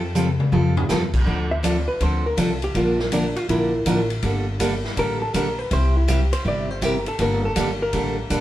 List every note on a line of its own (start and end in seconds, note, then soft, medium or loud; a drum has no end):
0.00 0.38 F2 loud
0.15 0.27 F3 medium
0.15 0.27 G3 medium
0.15 0.27 C4 medium
0.15 0.28 F4 medium
0.15 0.28 A4 medium
0.15 hi-hat pedal medium
0.15 mid tom medium
0.40 mid tom medium
0.52 0.84 F2 medium
0.52 0.75 F3 medium
0.52 0.75 G3 medium
0.52 0.75 C4 medium
0.52 0.75 F4 medium
0.52 0.75 A4 medium
0.52 floor tom medium
0.77 floor tom loud
0.89 1.21 E2 medium
0.89 1.01 F3 medium
0.89 1.01 G3 medium
0.89 1.01 C4 medium
0.89 1.02 F4 medium
0.89 1.02 A4 medium
0.89 snare medium
0.89 hi-hat pedal medium
1.14 kick medium
1.14 crash medium
1.26 1.86 D2 medium
1.26 1.49 D3 medium
1.26 1.49 F3 medium
1.26 1.49 C4 medium
1.26 1.49 D4 medium
1.26 1.49 A4 medium
1.26 kick soft
1.51 1.64 E5 medium
1.63 1.75 D3 medium
1.63 1.75 F3 medium
1.63 1.75 C4 medium
1.63 1.75 D4 medium
1.63 1.76 A4 medium
1.63 1.88 D5 medium
1.63 kick soft
1.63 hi-hat pedal medium
1.63 ride medium
1.88 2.00 B4 medium
2.00 2.32 D2 medium
2.00 2.23 D3 medium
2.00 2.23 F3 medium
2.00 2.23 C4 medium
2.00 2.23 D4 medium
2.00 2.23 A4 medium
2.00 2.25 C5 medium
2.00 kick soft
2.00 ride medium
2.26 2.40 A#4 medium
2.37 2.69 C2 medium
2.37 2.49 D3 medium
2.37 2.49 F3 medium
2.37 2.49 C4 medium
2.37 2.50 D4 medium
2.37 2.50 A4 medium
2.37 2.63 A4 medium
2.37 kick soft
2.37 hi-hat pedal medium
2.37 ride medium
2.62 2.75 G4 medium
2.62 ride medium
2.75 3.34 A#1 medium
2.75 2.97 D3 medium
2.75 2.97 F3 medium
2.75 2.97 A#3 medium
2.75 2.98 D4 medium
2.75 3.00 F4 medium
2.75 2.98 A#4 medium
2.75 kick soft
2.75 ride medium
2.99 3.12 A#3 soft
2.99 snare soft
3.12 3.24 D3 medium
3.12 3.24 F3 medium
3.12 3.24 A#3 medium
3.12 3.24 D4 medium
3.12 3.36 D4 medium
3.12 3.24 A#4 medium
3.12 kick soft
3.12 hi-hat pedal medium
3.12 ride medium
3.36 3.49 F4 loud
3.36 ride soft
3.49 3.80 A#1 medium
3.49 3.71 D3 medium
3.49 3.72 F3 medium
3.49 3.72 A#3 medium
3.49 3.72 D4 medium
3.49 4.07 E4 medium
3.49 3.72 A#4 medium
3.49 kick soft
3.49 ride medium
3.86 4.17 A1 medium
3.86 3.98 D3 medium
3.86 3.98 F3 medium
3.86 3.98 A#3 medium
3.86 3.98 D4 medium
3.86 3.98 A#4 medium
3.86 kick soft
3.86 hi-hat pedal medium
3.86 ride medium
4.10 ride soft
4.22 4.82 G1 medium
4.22 4.45 D3 medium
4.22 4.45 G3 medium
4.22 4.46 A#3 medium
4.22 4.46 D4 medium
4.22 4.46 A4 medium
4.22 kick soft
4.22 ride medium
4.59 4.72 D3 medium
4.59 4.72 G3 medium
4.59 4.72 A#3 medium
4.59 4.72 D4 medium
4.59 4.72 A4 medium
4.59 kick soft
4.59 hi-hat pedal medium
4.59 ride medium
4.85 snare soft
4.96 5.28 A1 medium
4.96 5.19 D3 medium
4.96 5.19 G3 medium
4.96 5.19 A#3 medium
4.96 5.19 D4 medium
4.96 5.20 A4 medium
4.96 5.21 A#4 medium
4.96 kick soft
4.96 ride medium
5.22 5.34 A4 medium
5.34 5.66 A#1 medium
5.34 5.46 D3 medium
5.34 5.46 G3 medium
5.34 5.46 A#3 medium
5.34 5.46 D4 medium
5.34 5.46 A4 medium
5.34 5.59 A#4 medium
5.34 kick soft
5.34 hi-hat pedal medium
5.34 ride medium
5.59 5.71 B4 medium
5.71 6.30 C2 loud
5.71 5.93 C3 medium
5.71 5.93 G3 medium
5.71 5.93 C4 medium
5.71 5.94 E4 medium
5.71 5.94 G4 medium
5.71 5.96 C5 loud
5.71 kick soft
5.71 ride medium
5.96 6.09 E4 medium
6.08 6.20 C3 medium
6.08 6.20 G3 medium
6.08 6.20 C4 medium
6.08 6.20 E4 medium
6.08 6.20 G4 medium
6.08 6.32 G4 medium
6.08 kick soft
6.08 hi-hat pedal medium
6.08 ride medium
6.33 6.45 C5 medium
6.33 ride medium
6.45 7.04 G1 medium
6.45 6.67 C3 medium
6.45 6.67 G3 medium
6.45 6.68 C4 medium
6.45 6.68 E4 medium
6.45 6.68 G4 medium
6.45 6.71 D5 medium
6.45 kick soft
6.71 6.82 C5 medium
6.81 6.94 C3 medium
6.81 6.94 G3 medium
6.81 6.94 C4 medium
6.81 6.94 E4 medium
6.81 6.94 G4 medium
6.81 7.07 A#4 medium
6.81 kick soft
6.81 hi-hat pedal medium
6.81 ride medium
7.06 7.20 A4 medium
7.06 ride medium
7.19 7.49 G1 loud
7.19 7.41 D3 medium
7.19 7.42 G3 medium
7.19 7.42 A#3 medium
7.19 7.42 D4 medium
7.19 7.42 A4 medium
7.19 7.44 A#4 medium
7.19 kick soft
7.19 ride medium
7.45 7.57 A4 medium
7.56 7.88 G1 medium
7.56 7.68 D3 medium
7.56 7.68 G3 medium
7.56 7.68 A#3 medium
7.56 7.68 D4 medium
7.56 7.68 A4 medium
7.56 kick soft
7.56 hi-hat pedal medium
7.56 ride medium
7.60 7.82 G4 medium
7.82 8.16 A#4 medium
7.93 8.25 A1 medium
7.93 8.16 D3 medium
7.93 8.16 G3 medium
7.93 8.16 A#3 medium
7.93 8.16 D4 medium
7.93 8.16 A4 medium
7.93 kick soft
7.93 ride medium
8.30 8.40 A#1 medium
8.30 8.40 D3 medium
8.30 8.40 G3 medium
8.30 8.40 A#3 medium
8.30 8.40 D4 medium
8.30 8.40 A4 medium
8.30 kick soft
8.30 hi-hat pedal medium
8.30 ride medium